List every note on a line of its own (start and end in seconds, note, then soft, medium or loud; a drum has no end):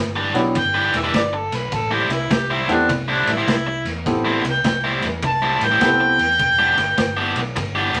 0.00 0.32 G1 medium
0.16 0.38 E3 medium
0.16 0.38 D4 medium
0.16 0.38 G4 medium
0.16 0.38 B4 medium
0.34 0.53 B1 medium
0.34 0.53 F#3 medium
0.34 0.53 B3 medium
0.34 0.53 D4 medium
0.34 0.53 E4 medium
0.34 0.53 G4 medium
0.34 snare soft
0.34 ride medium
0.55 0.91 G1 medium
0.55 0.94 G5 medium
0.55 muted overdriven electric guitar stroke soft
0.55 kick medium
0.55 snare soft
0.55 ride medium
0.74 0.97 E3 medium
0.74 0.97 D4 medium
0.74 0.97 G4 medium
0.74 0.96 B4 medium
0.93 1.12 E1 medium
0.93 1.14 E5 medium
0.93 snare soft
0.93 ride medium
1.04 1.20 E3 medium
1.04 1.20 D4 medium
1.04 1.20 G4 medium
1.04 1.20 B4 medium
1.14 1.49 G1 medium
1.14 1.36 D5 medium
1.14 kick medium
1.14 snare loud
1.14 ride medium
1.33 1.56 A4 medium
1.33 muted overdriven electric guitar stroke soft
1.52 1.71 B1 medium
1.52 1.75 B4 medium
1.52 snare soft
1.52 ride medium
1.72 2.08 A1 medium
1.72 1.92 A4 medium
1.72 kick medium
1.72 snare soft
1.72 ride medium
1.91 2.09 A2 medium
1.91 2.09 G3 medium
1.91 2.10 C4 medium
1.91 2.10 E4 medium
1.91 2.14 G4 medium
2.09 2.29 C2 medium
2.09 2.34 E4 medium
2.09 muted overdriven electric guitar stroke soft
2.09 snare soft
2.09 ride medium
2.31 2.66 C2 medium
2.31 2.54 G4 medium
2.31 muted overdriven electric guitar stroke soft
2.31 kick medium
2.31 snare loud
2.31 ride medium
2.50 2.73 A2 medium
2.50 2.73 G3 medium
2.50 2.72 C4 medium
2.50 2.72 E4 medium
2.50 2.73 E4 medium
2.68 2.87 E2 medium
2.68 2.87 A3 medium
2.68 2.87 B3 medium
2.68 2.87 C4 medium
2.68 2.90 D4 medium
2.68 2.88 E4 medium
2.68 2.88 G4 medium
2.68 snare soft
2.68 ride medium
2.89 3.25 C2 medium
2.89 muted overdriven electric guitar stroke soft
2.89 kick medium
2.89 snare soft
2.89 ride medium
3.08 3.31 A2 medium
3.08 3.31 G3 medium
3.08 3.31 C4 medium
3.08 3.33 D4 medium
3.08 3.30 E4 medium
3.27 3.46 A1 medium
3.27 snare soft
3.27 ride medium
3.32 3.87 E4 loud
3.37 3.54 A2 medium
3.37 3.54 G3 medium
3.37 3.54 C4 medium
3.37 3.53 E4 medium
3.48 3.83 C2 medium
3.48 kick medium
3.48 snare medium
3.48 ride medium
3.67 muted overdriven electric guitar stroke soft
3.85 4.04 E2 medium
3.85 snare soft
3.85 ride medium
4.06 4.42 A1 medium
4.06 4.40 A3 medium
4.06 4.40 B3 medium
4.06 4.41 C4 medium
4.06 4.41 E4 medium
4.06 4.41 G4 medium
4.06 kick medium
4.06 snare soft
4.06 ride medium
4.25 4.43 A2 medium
4.25 4.43 G3 medium
4.25 4.43 C4 medium
4.25 4.44 E4 medium
4.44 4.63 C2 medium
4.44 4.66 G5 loud
4.44 muted overdriven electric guitar stroke soft
4.44 snare soft
4.44 ride medium
4.64 5.00 C2 medium
4.64 4.85 G5 medium
4.64 muted overdriven electric guitar stroke soft
4.64 kick medium
4.64 snare loud
4.64 ride medium
4.84 5.07 A2 medium
4.84 5.06 G3 medium
4.84 5.06 C4 medium
4.84 5.06 E4 medium
5.02 5.22 E2 medium
5.02 snare soft
5.02 ride medium
5.22 5.58 C2 medium
5.22 5.66 A5 loud
5.22 muted overdriven electric guitar stroke soft
5.22 kick medium
5.22 snare soft
5.22 ride medium
5.42 5.65 A2 medium
5.42 5.65 G3 medium
5.42 5.65 C4 medium
5.42 5.64 E4 medium
5.61 5.80 A1 medium
5.61 7.35 G5 loud
5.61 snare soft
5.61 ride medium
5.71 5.88 A2 medium
5.71 5.88 G3 medium
5.71 5.87 C4 medium
5.71 5.87 E4 medium
5.80 6.17 C2 medium
5.80 6.15 A3 medium
5.80 6.15 B3 medium
5.80 6.15 C4 medium
5.80 6.16 E4 medium
5.80 6.16 G4 medium
5.80 kick medium
5.80 snare loud
5.80 ride medium
6.00 muted overdriven electric guitar stroke soft
6.18 6.38 E2 medium
6.18 snare soft
6.18 ride medium
6.39 6.75 E1 medium
6.39 kick medium
6.39 snare soft
6.39 ride medium
6.59 6.77 E3 medium
6.59 6.77 B3 medium
6.59 6.77 D4 medium
6.59 6.77 G4 medium
6.77 6.96 G1 medium
6.77 muted overdriven electric guitar stroke soft
6.77 snare soft
6.77 ride medium
6.97 7.33 G1 medium
6.97 muted overdriven electric guitar stroke soft
6.97 kick medium
6.97 snare loud
6.97 ride medium
7.17 7.40 E3 medium
7.17 7.39 B3 medium
7.17 7.39 D4 medium
7.17 7.39 G4 medium
7.36 7.55 B1 medium
7.36 snare soft
7.36 ride medium
7.56 7.92 G1 loud
7.56 muted overdriven electric guitar stroke soft
7.56 kick medium
7.56 snare soft
7.56 ride medium
7.75 7.98 E3 medium
7.75 7.98 B3 medium
7.75 7.98 D4 medium
7.75 7.98 G4 loud
7.94 8.00 E1 medium
7.94 snare soft
7.94 ride medium